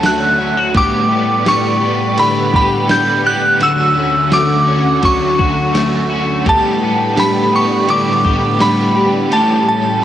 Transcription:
0.00 0.72 D2 medium
0.00 0.72 D3 medium
0.00 0.74 D3 medium
0.00 0.82 F#3 medium
0.00 0.39 F#3 medium
0.00 0.39 A3 medium
0.00 0.82 C#4 medium
0.00 0.38 F#4 medium
0.00 0.72 F#4 medium
0.00 0.72 C#5 medium
0.00 snare loud
0.00 ride medium
0.00 tambourine medium
0.05 0.38 C#4 medium
0.05 0.37 F#4 medium
0.05 0.78 F#6 medium
0.38 0.74 A3 soft
0.38 0.75 C#4 medium
0.38 0.57 E4 medium
0.38 0.74 F#4 medium
0.57 0.75 F#4 medium
0.74 1.10 A2 medium
0.74 3.58 A2 medium
0.74 1.10 D3 medium
0.74 3.57 G3 medium
0.74 1.11 G3 medium
0.74 1.09 B3 medium
0.74 1.07 G4 medium
0.74 3.58 B4 medium
0.74 3.57 D5 medium
0.74 1.50 D6 loud
0.74 kick loud
0.74 ride medium
1.09 1.44 G3 soft
1.09 1.46 B3 soft
1.09 1.45 G4 soft
1.44 1.81 D3 medium
1.44 1.82 G3 medium
1.44 1.81 B3 medium
1.44 1.79 G4 medium
1.44 snare loud
1.44 ride medium
1.44 tambourine medium
1.48 2.21 C#6 loud
1.81 2.16 G3 soft
1.81 2.16 B3 soft
1.81 2.17 G4 medium
2.16 2.52 A2 medium
2.16 2.53 D3 medium
2.16 2.53 G3 medium
2.16 2.53 B3 medium
2.16 2.52 G4 medium
2.16 2.55 B5 loud
2.16 ride medium
2.53 2.88 G3 soft
2.53 2.89 B3 medium
2.53 2.89 G4 medium
2.53 2.91 B5 medium
2.53 kick loud
2.88 3.24 D3 medium
2.88 3.25 G3 medium
2.88 3.25 B3 medium
2.88 3.22 G4 medium
2.88 3.27 G6 medium
2.88 snare loud
2.88 ride medium
2.88 tambourine medium
3.23 3.60 G3 medium
3.23 3.60 B3 medium
3.23 3.60 G4 medium
3.23 3.62 F#6 loud
3.59 6.44 D2 medium
3.59 3.96 D3 medium
3.59 6.44 D3 medium
3.59 3.96 F#3 medium
3.59 3.96 A3 medium
3.59 3.95 C#4 medium
3.59 6.44 C#4 medium
3.59 6.44 F#4 medium
3.59 3.93 F#4 medium
3.59 4.35 E6 loud
3.59 ride medium
3.94 4.31 A3 soft
3.94 4.32 C#4 soft
3.94 4.31 F#4 medium
4.31 4.67 F#3 medium
4.31 4.68 A3 medium
4.31 4.67 C#4 medium
4.31 4.65 F#4 medium
4.31 5.06 D6 loud
4.31 snare loud
4.31 ride medium
4.31 tambourine medium
4.66 5.02 A3 medium
4.66 5.02 C#4 medium
4.66 5.03 F#4 medium
5.02 5.38 D3 medium
5.02 5.39 F#3 medium
5.02 5.39 A3 medium
5.02 5.38 C#4 medium
5.02 5.36 F#4 medium
5.02 6.07 C#6 medium
5.02 kick medium
5.02 ride medium
5.38 5.74 A3 medium
5.38 5.75 C#4 medium
5.38 5.74 F#4 medium
5.38 kick medium
5.74 6.10 F#3 medium
5.74 6.11 A3 medium
5.74 6.10 C#4 medium
5.74 6.09 F#4 medium
5.74 snare medium
5.74 ride medium
5.74 tambourine medium
6.10 6.46 A3 medium
6.10 6.47 C#4 medium
6.10 6.46 F#4 medium
6.46 6.82 A2 medium
6.46 10.04 A2 medium
6.46 6.82 D3 medium
6.46 10.04 G3 medium
6.46 6.82 G3 medium
6.46 6.82 B3 medium
6.46 9.29 D4 medium
6.46 6.80 G4 medium
6.46 9.29 B4 medium
6.46 7.21 A5 loud
6.46 kick loud
6.46 ride medium
6.81 7.16 G3 soft
6.81 7.18 B3 soft
6.81 7.17 G4 medium
7.16 7.53 D3 medium
7.16 7.53 G3 medium
7.16 7.53 B3 medium
7.16 7.51 G4 medium
7.16 7.55 B5 medium
7.16 snare loud
7.16 ride medium
7.16 tambourine medium
7.53 7.87 G3 soft
7.53 7.88 B3 medium
7.53 7.88 G4 medium
7.53 7.91 C#6 medium
7.87 8.24 A2 medium
7.87 8.24 D3 medium
7.87 8.24 G3 medium
7.87 8.23 B3 loud
7.87 8.21 G4 medium
7.87 8.63 D6 loud
7.87 ride medium
8.23 8.59 G3 soft
8.23 8.60 B3 medium
8.23 8.59 G4 medium
8.23 kick medium
8.59 8.96 D3 medium
8.59 8.96 G3 medium
8.59 8.95 B3 medium
8.59 8.93 G4 medium
8.59 9.11 B5 loud
8.59 snare medium
8.59 ride medium
8.59 tambourine medium
8.95 9.30 G3 soft
8.95 9.31 B3 medium
8.95 9.31 G4 medium
9.30 9.67 A2 medium
9.30 9.67 E3 medium
9.30 9.67 G3 medium
9.30 9.66 C#4 loud
9.30 10.04 C#4 medium
9.30 9.65 G4 medium
9.30 10.04 A4 loud
9.30 9.67 A5 medium
9.30 ride medium
9.66 10.02 G3 soft
9.66 10.02 C#4 soft
9.66 10.03 G4 medium
9.66 10.04 A5 medium

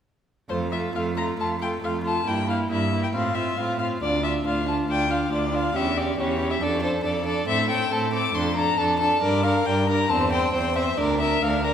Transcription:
0.49 0.89 F2 soft
0.49 0.71 A3 soft
0.49 0.72 F4 soft
0.49 0.57 C5 medium
0.71 0.94 A3 soft
0.71 0.95 F4 soft
0.71 0.80 E5 soft
0.94 1.33 F2 soft
0.94 1.15 A3 soft
0.94 1.17 F4 soft
0.94 1.03 F5 soft
1.16 1.36 A3 soft
1.16 1.39 F4 soft
1.16 1.25 A#5 medium
1.37 1.77 F2 soft
1.37 1.59 A3 soft
1.37 1.61 F4 soft
1.37 1.48 A5 medium
1.61 1.81 A3 soft
1.61 1.82 F4 soft
1.61 1.70 G5 medium
1.82 2.21 F2 soft
1.82 2.03 A3 soft
1.82 2.03 F4 soft
1.82 1.92 F5 medium
2.04 2.25 A3 soft
2.04 2.26 F4 soft
2.04 2.29 A5 medium
2.26 2.65 G2 soft
2.26 2.48 A#3 soft
2.26 2.48 E4 soft
2.26 2.49 G5 medium
2.49 2.70 A#3 soft
2.49 2.70 E4 soft
2.49 2.57 F5 medium
2.71 3.10 G2 soft
2.71 2.93 A#3 soft
2.71 2.92 E4 soft
2.71 3.02 E5 medium
2.93 3.14 A#3 soft
2.93 3.15 E4 soft
3.03 3.07 G5 soft
3.13 3.53 A2 soft
3.13 3.36 C4 soft
3.13 3.36 F4 soft
3.13 3.36 F5 medium
3.35 3.58 C4 soft
3.35 3.58 F4 soft
3.35 3.58 E5 medium
3.57 3.96 A2 soft
3.57 3.80 C4 soft
3.57 3.80 F4 soft
3.57 3.78 F5 medium
3.79 4.02 C4 soft
3.79 4.02 F4 soft
3.79 3.87 F5 medium
4.01 4.40 D2 soft
4.01 4.23 D4 soft
4.01 4.24 F4 soft
4.01 4.23 D5 medium
4.23 4.44 D4 soft
4.23 4.46 F4 soft
4.23 4.32 E5 medium
4.44 4.84 D2 soft
4.44 4.66 D4 soft
4.44 4.67 F4 soft
4.44 4.67 F5 medium
4.67 4.88 D4 soft
4.67 4.89 F4 soft
4.67 4.76 A5 medium
4.88 5.26 D2 soft
4.88 5.09 D4 soft
4.88 5.11 F4 soft
4.88 5.12 G5 medium
5.10 5.31 D4 soft
5.10 5.31 F4 soft
5.10 5.32 F5 medium
5.32 5.70 D2 soft
5.32 5.53 D4 soft
5.32 5.53 F4 soft
5.32 5.56 D5 medium
5.53 5.75 D4 soft
5.53 5.75 F4 soft
5.53 5.77 F5 medium
5.75 6.14 E2 medium
5.75 5.96 C#4 soft
5.75 5.95 G4 soft
5.75 5.99 E5 medium
5.96 6.17 C#4 soft
5.96 6.18 G4 soft
5.96 6.18 D5 medium
6.17 6.57 E2 soft
6.17 6.39 C#4 soft
6.17 6.39 G4 soft
6.17 6.52 C#5 medium
6.39 6.62 C#4 soft
6.39 6.61 G4 soft
6.51 6.64 E5 medium
6.61 7.00 F2 soft
6.61 6.82 D4 soft
6.61 6.82 A4 soft
6.61 6.82 D5 medium
6.83 7.04 D4 soft
6.83 7.03 A4 soft
6.83 6.91 C5 medium
7.03 7.43 F2 soft
7.03 7.24 D4 soft
7.03 7.26 A4 soft
7.03 7.26 D5 medium
7.25 7.47 D4 soft
7.25 7.47 A4 soft
7.25 7.48 D5 medium
7.48 7.87 A2 medium
7.48 7.68 C4 soft
7.48 7.69 A4 soft
7.48 7.69 E5 medium
7.69 7.91 C4 soft
7.69 7.91 A4 soft
7.69 7.93 G5 medium
7.91 8.30 A2 medium
7.91 8.12 C4 soft
7.91 8.13 A4 soft
7.91 8.12 A5 medium
8.13 8.34 C4 soft
8.13 8.34 A4 soft
8.13 8.36 D6 medium
8.35 8.73 F2 medium
8.35 8.57 D4 soft
8.35 8.56 A4 soft
8.35 8.55 C6 medium
8.56 8.78 D4 soft
8.56 8.78 A4 soft
8.56 8.79 A#5 medium
8.77 9.17 F2 soft
8.77 9.00 D4 soft
8.77 8.99 A4 medium
8.77 8.98 A5 medium
8.98 9.22 D4 soft
8.98 9.22 A4 soft
8.98 9.21 A5 medium
9.21 9.61 G2 medium
9.21 9.44 D4 medium
9.21 9.44 A#4 soft
9.21 9.45 D5 medium
9.44 9.65 D4 soft
9.44 9.67 A#4 soft
9.44 9.67 F5 medium
9.65 10.05 G2 medium
9.65 9.88 D4 soft
9.65 9.89 A#4 soft
9.65 9.88 G5 medium
9.88 10.10 D4 soft
9.88 10.10 A#4 soft
9.88 10.10 A#5 medium
10.09 10.49 E2 medium
10.09 10.32 C4 medium
10.09 10.32 C5 soft
10.09 10.31 A5 medium
10.32 10.54 C4 soft
10.32 10.52 C5 soft
10.32 10.53 G5 medium
10.53 10.93 E2 soft
10.53 10.76 C4 soft
10.53 10.75 C5 soft
10.53 10.77 G5 medium
10.76 10.97 C4 soft
10.76 10.98 C5 soft
10.76 10.99 E5 medium
10.97 11.37 D2 medium
10.97 11.20 D4 soft
10.97 11.21 A#4 soft
10.97 11.19 D5 medium
11.20 11.42 D4 soft
11.20 11.43 A#4 soft
11.20 11.44 E5 medium
11.42 11.74 D2 medium
11.42 11.64 D4 soft
11.42 11.65 A#4 soft
11.42 11.63 F5 medium
11.64 11.74 D4 soft
11.64 11.74 A#4 soft
11.64 11.72 A#5 medium

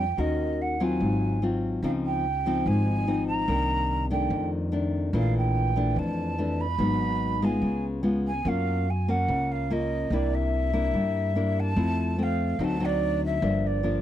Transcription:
0.00 0.14 F2 medium
0.00 0.16 F3 medium
0.00 0.21 G5 medium
0.17 0.96 D#2 medium
0.17 0.98 D#3 medium
0.17 0.76 C#4 medium
0.17 0.76 F#4 medium
0.17 0.77 A#4 medium
0.17 0.63 D#5 medium
0.62 0.85 F#5 medium
0.80 1.38 F#3 medium
0.80 1.39 C4 medium
0.80 1.39 F4 medium
0.80 1.43 G#5 medium
1.00 1.79 G#1 medium
1.00 1.81 G#2 medium
1.42 1.80 F#3 soft
1.42 1.80 C4 soft
1.42 1.80 F4 medium
1.82 2.61 C#2 medium
1.82 2.64 C#3 medium
1.82 2.24 F3 medium
1.82 2.24 C4 medium
1.82 2.25 D#4 medium
1.82 1.91 F5 medium
2.06 2.69 G5 medium
2.46 3.04 F3 medium
2.46 3.05 C4 medium
2.46 3.05 D#4 medium
2.66 3.44 G#1 medium
2.66 3.47 G#2 medium
2.66 3.27 G#5 medium
3.07 3.45 F3 soft
3.07 3.45 C4 medium
3.07 3.46 D#4 medium
3.27 4.06 A#5 loud
3.48 4.27 C2 medium
3.48 4.29 C3 medium
3.48 4.07 D#3 medium
3.48 4.07 A#3 medium
3.48 4.07 D4 medium
4.10 4.69 D#3 medium
4.10 4.69 A3 medium
4.10 4.70 D4 medium
4.10 4.50 G5 medium
4.30 5.09 F2 medium
4.30 5.11 F2 medium
4.72 5.10 D#3 medium
4.72 5.10 A3 soft
4.72 5.11 D4 medium
5.13 5.92 A#1 medium
5.13 5.94 A#2 medium
5.13 5.73 E3 medium
5.13 5.73 A3 medium
5.13 5.73 D4 medium
5.13 5.34 F5 medium
5.38 6.00 G5 medium
5.76 6.35 E3 medium
5.76 6.35 A3 medium
5.76 6.35 D4 medium
5.96 6.75 F2 medium
5.96 6.77 F2 medium
5.96 6.62 A5 medium
6.38 6.65 E3 medium
6.38 6.65 A3 medium
6.38 6.65 D4 soft
6.61 7.46 B5 loud
6.79 7.58 G#1 medium
6.79 7.60 G#2 medium
6.79 7.38 F#3 medium
6.79 7.38 B3 medium
6.79 7.38 D#4 medium
7.42 8.01 G#3 medium
7.42 8.01 B3 medium
7.42 8.01 F4 medium
7.42 7.84 G#5 medium
7.62 8.41 C#2 medium
7.62 8.43 C#3 medium
8.03 8.30 G#3 medium
8.03 8.30 B3 medium
8.03 8.30 F4 soft
8.27 8.50 G#5 medium
8.45 9.24 F#2 medium
8.45 9.26 F#3 medium
8.45 8.86 A#3 medium
8.45 8.87 C#4 medium
8.45 8.87 F4 medium
8.45 8.92 F5 medium
8.90 9.12 G#5 medium
9.08 9.67 A#3 medium
9.08 9.67 C#4 medium
9.08 9.53 F#5 medium
9.28 10.07 C#2 medium
9.28 10.09 C#3 medium
9.52 9.74 F5 medium
9.70 10.08 A#3 medium
9.70 10.08 C#4 medium
9.70 10.08 F4 medium
9.70 10.15 D#5 medium
10.10 10.89 C2 medium
10.10 10.92 C3 medium
10.10 10.70 A#3 medium
10.10 10.70 D4 medium
10.10 10.71 E4 medium
10.10 10.36 D5 medium
10.35 11.61 E5 loud
10.73 11.32 A#3 medium
10.73 11.32 D4 medium
10.73 11.32 E4 medium
10.93 11.72 G2 medium
10.93 11.75 G3 medium
11.35 11.73 A#3 medium
11.35 11.74 D4 medium
11.35 11.74 E4 medium
11.60 12.24 A5 loud
11.76 12.55 F2 medium
11.76 12.57 F3 medium
11.76 12.14 A3 medium
11.76 12.15 C4 medium
11.76 12.15 E4 medium
12.18 12.56 A3 medium
12.18 12.56 C4 medium
12.23 12.65 F5 medium
12.59 13.38 D2 medium
12.59 13.40 D3 medium
12.59 12.77 F#3 medium
12.59 12.77 C4 medium
12.59 12.77 D#4 medium
12.64 12.87 A5 medium
12.80 13.39 F#3 medium
12.80 13.39 C4 medium
12.80 13.39 D#4 medium
12.85 13.24 D5 medium
13.25 13.68 E5 loud
13.42 14.02 G1 medium
13.42 14.02 G2 medium
13.42 13.80 F3 medium
13.42 13.80 A#3 medium
13.42 13.80 D4 medium
13.67 14.02 D5 medium
13.83 14.02 F3 medium
13.83 14.02 A#3 soft
13.83 14.02 D4 medium

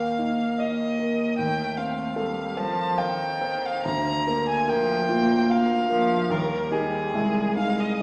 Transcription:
0.00 1.35 D#2 soft
0.00 1.36 A#3 soft
0.00 1.42 A#3 soft
0.00 0.43 A#4 soft
0.00 0.61 F5 medium
0.18 0.83 D#4 soft
0.58 1.23 D#5 soft
0.58 1.37 D#5 medium
0.99 1.39 A#4 soft
1.38 3.82 D#2 soft
1.38 2.20 A3 soft
1.38 1.78 G5 medium
1.77 2.41 C4 soft
1.77 2.58 F5 medium
2.16 2.60 G3 soft
2.16 2.81 A4 soft
2.57 3.00 F3 soft
2.57 3.24 C5 soft
2.57 2.99 A5 medium
2.98 3.89 D#3 soft
2.98 3.69 F5 soft
2.98 3.67 G5 medium
3.41 3.86 C5 soft
3.65 3.85 F5 medium
3.85 6.26 D2 soft
3.85 4.72 D3 soft
3.85 4.47 A#5 medium
4.27 4.93 A#3 soft
4.49 4.70 G#5 medium
4.68 5.09 F3 medium
4.68 5.34 A#4 soft
4.68 5.52 G5 medium
5.09 5.50 A#3 medium
5.09 5.74 F4 soft
5.50 5.90 A#3 medium
5.50 6.14 F5 soft
5.50 6.32 F5 medium
5.90 6.34 F3 medium
5.90 6.31 A#4 soft
6.30 7.11 D#2 medium
6.30 7.14 G3 soft
6.30 6.72 A#4 medium
6.71 7.10 D#4 soft
6.71 7.10 G4 soft
6.71 7.56 G#4 medium
7.13 7.98 C2 soft
7.13 7.99 G#3 soft
7.57 7.96 D#4 soft
7.57 7.97 G#4 soft
7.57 7.81 F5 medium
7.80 8.02 D#5 medium

